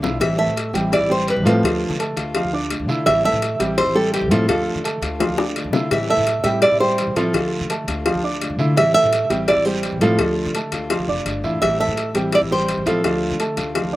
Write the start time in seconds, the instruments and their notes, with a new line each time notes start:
0.02 upright bass B1, steel-string acoustic guitar A3 D4 F4, grand piano E4 E5 E6, low bongo, short guiro
0.20 upright bass A1, steel-string acoustic guitar E3 G3 C4 E4, nylon-string guitar E5, cowbell, long guiro
0.38 grand piano A3 A4 A5, nylon-string guitar E5
0.47 upright bass A2
0.56 muted steel-string acoustic guitar stroke, cowbell, short guiro
0.73 upright bass A1, grand piano G3 G4 G5, steel-string acoustic guitar G3 C4 E4, cowbell, short guiro
0.92 grand piano E4 E5 E6, nylon-string guitar D5, cowbell, long guiro
1.00 upright bass A1
1.09 grand piano G3 G4 G5, nylon-string guitar C5
1.28 steel-string acoustic guitar E3 G3 C4 E4, nylon-string guitar B4, cowbell, short guiro
1.36 upright bass A1
1.45 upright bass A2, grand piano F3 F4 F5, steel-string acoustic guitar G3 C4 E4, nylon-string guitar A4, cowbell, short guiro
1.63 upright bass D2, steel-string acoustic guitar D3 A3 D4 F4, grand piano F3 F4 F5, cowbell, long guiro
1.90 upright bass D3
1.99 grand piano A3 A4 A5, muted steel-string acoustic guitar stroke, cowbell, short guiro
2.17 upright bass D2, steel-string acoustic guitar A3 D4 F4, cowbell, short guiro
2.35 grand piano F3 F4 F5, cowbell, long guiro
2.44 upright bass D2
2.53 grand piano D4 D5 D6
2.70 steel-string acoustic guitar D3 A3 D4 F4, cowbell, short guiro
2.79 upright bass D2
2.88 upright bass D3, steel-string acoustic guitar A3 D4 F4, grand piano E4 E5 E6, short guiro
3.05 upright bass A1, steel-string acoustic guitar E3 G3 C4 E4, nylon-string guitar E5, cowbell, long guiro
3.24 grand piano A3 A4 A5, nylon-string guitar E5
3.33 upright bass A2
3.41 muted steel-string acoustic guitar stroke, cowbell, short guiro
3.59 upright bass A1, grand piano G3 G4 G5, steel-string acoustic guitar G3 C4 E4, cowbell, short guiro
3.77 grand piano E4 E5 E6, nylon-string guitar C5, cowbell, long guiro
3.86 upright bass A1
3.95 grand piano G3 G4 G5, nylon-string guitar A4
4.14 steel-string acoustic guitar E3 G3 C4 E4, nylon-string guitar G4, cowbell, short guiro
4.21 upright bass A1
4.30 upright bass A2, grand piano F3 F4 F5, steel-string acoustic guitar G3 C4 E4, nylon-string guitar A4, cowbell, short guiro
4.48 upright bass D2, steel-string acoustic guitar D3 A3 D4 F4, grand piano F3 F4 F5, nylon-string guitar A4, cowbell, long guiro
4.75 upright bass D3
4.84 grand piano A3 A4 A5, muted steel-string acoustic guitar stroke, cowbell, short guiro
5.02 upright bass D2, steel-string acoustic guitar A3 D4 F4, cowbell, short guiro
5.20 grand piano F3 F4 F5, cowbell, high bongo, long guiro
5.29 upright bass D2
5.38 grand piano D4 D5 D6, high bongo
5.56 steel-string acoustic guitar D3 A3 D4 F4, cowbell, short guiro
5.64 upright bass D2
5.73 upright bass D3, steel-string acoustic guitar A3 D4 F4, grand piano E4 E5 E6, low bongo, short guiro
5.90 upright bass A2, steel-string acoustic guitar E3 G3 C4 E4, nylon-string guitar E5, cowbell, long guiro
6.09 grand piano A3 A4 A5, nylon-string guitar E5
6.17 upright bass A2
6.27 muted steel-string acoustic guitar stroke, cowbell, short guiro
6.44 upright bass A2, grand piano G3 G4 G5, steel-string acoustic guitar G3 C4 E4, nylon-string guitar E5, cowbell, short guiro
6.62 grand piano E4 E5 E6, nylon-string guitar D5, cowbell, long guiro
6.71 upright bass A2
6.80 grand piano G3 G4 G5, nylon-string guitar C5
6.98 steel-string acoustic guitar E3 G3 C4 E4, cowbell, short guiro
7.07 upright bass A2
7.15 upright bass A2, grand piano F3 F4 F5, steel-string acoustic guitar G3 C4 E4, nylon-string guitar A4, cowbell, short guiro
7.34 upright bass D2, steel-string acoustic guitar D3 A3 D4 F4, grand piano F3 F4 F5, cowbell, long guiro
7.61 upright bass D3
7.70 grand piano A3 A4 A5, muted steel-string acoustic guitar stroke, cowbell, short guiro
7.88 upright bass D2, steel-string acoustic guitar A3 D4 F4, cowbell, short guiro
8.06 grand piano F3 F4 F5, cowbell, long guiro
8.15 upright bass D2
8.23 grand piano D4 D5 D6
8.41 steel-string acoustic guitar D3 A3 D4 F4, cowbell, short guiro
8.50 upright bass D2
8.58 upright bass D3, steel-string acoustic guitar A3 D4 F4, grand piano E4 E5 E6, short guiro
8.76 upright bass A1, steel-string acoustic guitar E3 G3 C4 E4, nylon-string guitar E5, cowbell, long guiro
8.94 grand piano A3 A4 A5, nylon-string guitar E5
9.03 upright bass A2
9.12 muted steel-string acoustic guitar stroke, cowbell, short guiro
9.30 upright bass A1, grand piano G3 G4 G5, steel-string acoustic guitar G3 C4 E4, cowbell, short guiro
9.48 grand piano E4 E5 E6, nylon-string guitar D5, cowbell, long guiro
9.56 upright bass A1
9.65 grand piano G3 G4 G5, nylon-string guitar C5
9.83 steel-string acoustic guitar E3 G3 C4 E4, cowbell, short guiro
9.92 upright bass A1
10.01 upright bass A2, grand piano F3 F4 F5, steel-string acoustic guitar G3 C4 E4, nylon-string guitar A4, cowbell, short guiro
10.18 upright bass D2, steel-string acoustic guitar D3 A3 D4 F4, grand piano F3 F4 F5, cowbell, long guiro
10.46 upright bass D3
10.55 grand piano A3 A4 A5, muted steel-string acoustic guitar stroke, cowbell, short guiro
10.72 upright bass D2, steel-string acoustic guitar A3 D4 F4, cowbell, short guiro
10.90 grand piano F3 F4 F5, cowbell, long guiro
10.99 upright bass D2
11.08 upright bass F1, grand piano D4 D5 D6
11.25 upright bass G1, steel-string acoustic guitar D3 A3 D4 F4, cowbell, short guiro
11.44 upright bass A1, steel-string acoustic guitar A3 D4 F4, grand piano E4 E5 E6, short guiro
11.61 upright bass A1, steel-string acoustic guitar E3 G3 C4 E4, nylon-string guitar E5, cowbell, long guiro
11.79 grand piano A3 A4 A5, nylon-string guitar E5
11.88 upright bass A2
11.97 muted steel-string acoustic guitar stroke, cowbell, short guiro
12.14 upright bass A1, grand piano G3 G4 G5, steel-string acoustic guitar G3 C4 E4, cowbell, short guiro
12.32 grand piano E4 E5 E6, nylon-string guitar D5, cowbell, long guiro
12.42 upright bass A1
12.51 grand piano G3 G4 G5, nylon-string guitar C5
12.68 steel-string acoustic guitar E3 G3 C4 E4, cowbell, short guiro
12.77 upright bass A1
12.86 upright bass A2, grand piano F3 F4 F5, steel-string acoustic guitar G3 C4 E4, nylon-string guitar A4, cowbell, short guiro
13.03 upright bass D2, steel-string acoustic guitar D3 A3 D4 F4, grand piano F3 F4 F5, cowbell, long guiro
13.31 upright bass D3
13.40 grand piano A3 A4 A5, muted steel-string acoustic guitar stroke, cowbell, short guiro
13.57 upright bass D2, steel-string acoustic guitar A3 D4 F4, cowbell, short guiro
13.75 grand piano F3 F4 F5, cowbell, long guiro
13.84 upright bass D2
13.93 grand piano D4